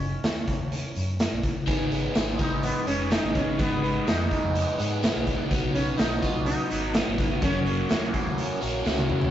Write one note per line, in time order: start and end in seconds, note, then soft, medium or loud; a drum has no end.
0.00 0.15 F#1 medium
0.00 1.15 C#4 loud
0.00 closed hi-hat soft
0.24 0.43 D#2 medium
0.24 snare medium
0.24 closed hi-hat medium
0.48 kick medium
0.48 closed hi-hat medium
0.59 0.79 D#2 medium
0.72 closed hi-hat medium
0.95 1.25 F#2 medium
0.95 closed hi-hat medium
1.19 snare loud
1.19 closed hi-hat medium
1.31 1.51 A#1 medium
1.43 kick medium
1.43 closed hi-hat medium
1.67 2.06 G#1 medium
1.67 2.14 G#2 medium
1.67 2.14 D#3 medium
1.67 1.92 G#3 medium
1.67 1.91 B3 loud
1.67 7.39 D#4 medium
1.67 1.90 D#4 loud
1.67 5.47 G#4 medium
1.67 5.47 B4 medium
1.67 3.57 G#5 medium
1.67 kick loud
1.67 closed hi-hat medium
1.90 2.15 G#3 medium
1.90 2.16 B3 medium
1.90 2.16 D#4 medium
1.90 closed hi-hat medium
2.14 2.35 G#1 medium
2.14 3.58 G#2 medium
2.14 2.63 D#3 medium
2.14 2.40 G#3 medium
2.14 2.39 B3 medium
2.14 2.37 D#4 medium
2.14 snare medium
2.14 closed hi-hat medium
2.14 tambourine medium
2.38 2.87 G#3 medium
2.38 2.87 B3 medium
2.38 2.86 D#4 medium
2.38 2.63 D#4 medium
2.38 kick medium
2.38 closed hi-hat medium
2.51 2.70 G#1 medium
2.63 2.87 B3 medium
2.63 closed hi-hat medium
2.86 3.16 F1 medium
2.86 3.10 G#3 medium
2.86 3.11 B3 medium
2.86 3.11 C#4 medium
2.86 3.12 D#4 medium
2.86 closed hi-hat medium
3.10 3.57 D#3 medium
3.10 3.58 G#3 medium
3.10 3.59 B3 medium
3.10 3.35 D#4 medium
3.10 3.59 D#4 medium
3.10 snare loud
3.10 closed hi-hat medium
3.10 tambourine medium
3.23 3.52 G#1 medium
3.35 3.58 C#4 medium
3.35 kick medium
3.35 closed hi-hat medium
3.58 3.98 G#1 medium
3.58 4.05 G#2 medium
3.58 4.06 D#3 loud
3.58 3.82 G#3 loud
3.58 3.83 B3 medium
3.58 4.04 B3 medium
3.58 3.82 D#4 medium
3.58 9.30 F#5 medium
3.58 kick loud
3.58 closed hi-hat medium
3.82 4.06 G#3 medium
3.82 4.07 B3 medium
3.82 4.08 D#4 medium
3.82 closed hi-hat medium
4.06 4.27 F2 medium
4.06 4.54 G#2 medium
4.06 4.55 D#3 medium
4.06 4.32 G#3 medium
4.06 4.32 B3 medium
4.06 5.23 D#4 medium
4.06 4.31 D#4 medium
4.06 snare loud
4.06 closed hi-hat medium
4.06 tambourine medium
4.31 4.79 G#3 medium
4.31 4.79 B3 medium
4.31 4.77 D#4 medium
4.31 kick medium
4.31 closed hi-hat medium
4.44 4.63 F2 medium
4.55 closed hi-hat medium
4.78 5.08 G#2 medium
4.78 5.02 G#3 medium
4.78 5.03 B3 medium
4.78 5.04 D#4 medium
4.78 closed hi-hat medium
5.02 5.49 D#3 medium
5.02 5.50 G#3 medium
5.02 5.50 B3 medium
5.02 5.50 D#4 medium
5.02 snare loud
5.02 closed hi-hat medium
5.02 tambourine medium
5.16 5.35 B1 medium
5.27 kick medium
5.27 closed hi-hat medium
5.50 5.90 B1 medium
5.50 5.97 B2 loud
5.50 5.76 F#3 loud
5.50 5.74 B3 medium
5.50 5.73 D#4 medium
5.50 9.29 F#4 medium
5.50 7.40 B4 medium
5.50 kick loud
5.50 closed hi-hat medium
5.74 5.99 F#3 medium
5.74 5.99 B3 medium
5.74 5.97 C#4 medium
5.74 5.99 D#4 medium
5.74 closed hi-hat medium
5.97 6.18 B1 medium
5.97 6.47 B2 medium
5.97 6.24 F#3 medium
5.97 6.23 B3 medium
5.97 6.20 D#4 medium
5.97 6.21 D#4 medium
5.97 snare loud
5.97 closed hi-hat medium
5.97 tambourine medium
6.21 6.70 B3 medium
6.21 6.69 D#4 medium
6.21 6.46 F4 medium
6.21 kick medium
6.21 closed hi-hat medium
6.25 6.71 F#3 medium
6.35 6.54 B1 medium
6.45 6.96 D#4 medium
6.45 closed hi-hat medium
6.70 7.00 G#1 medium
6.70 6.94 F#3 medium
6.70 6.94 B3 medium
6.70 6.94 D#4 medium
6.70 closed hi-hat medium
6.94 7.41 B2 medium
6.94 7.43 F#3 medium
6.94 7.41 B3 medium
6.94 7.14 C#4 medium
6.94 7.41 D#4 medium
6.94 snare loud
6.94 closed hi-hat medium
6.94 tambourine medium
7.07 7.36 G#1 medium
7.18 kick medium
7.18 snare soft
7.18 closed hi-hat medium
7.42 7.81 F#1 medium
7.42 7.88 F#2 loud
7.42 7.88 C#3 medium
7.42 7.66 F#3 medium
7.42 7.65 A#3 loud
7.42 9.31 C#4 medium
7.42 7.64 C#4 loud
7.42 8.83 C#4 loud
7.42 9.31 A#4 medium
7.42 kick loud
7.42 closed hi-hat medium
7.65 7.89 F#3 medium
7.65 7.90 A#3 medium
7.65 7.90 C#4 medium
7.65 closed hi-hat medium
7.89 8.10 D#2 medium
7.89 8.37 F#2 medium
7.89 8.38 C#3 medium
7.89 8.14 F#3 medium
7.89 8.13 A#3 medium
7.89 8.12 C#4 medium
7.89 snare loud
7.89 closed hi-hat medium
7.89 tambourine medium
8.13 8.61 F#3 medium
8.13 8.60 A#3 medium
8.13 8.59 C#4 medium
8.13 kick medium
8.13 closed hi-hat medium
8.26 8.45 D#2 medium
8.38 closed hi-hat medium
8.60 8.84 A#1 medium
8.60 8.83 F#3 medium
8.60 8.84 A#3 medium
8.60 8.84 C#4 medium
8.60 closed hi-hat medium
8.84 9.07 C#2 medium
8.84 9.31 C#3 medium
8.84 9.31 F#3 medium
8.84 9.31 A#3 medium
8.84 9.31 C#4 medium
8.84 snare medium
8.84 tambourine medium
8.98 high tom medium
9.09 9.31 D#2 medium
9.09 mid tom medium
9.21 floor tom medium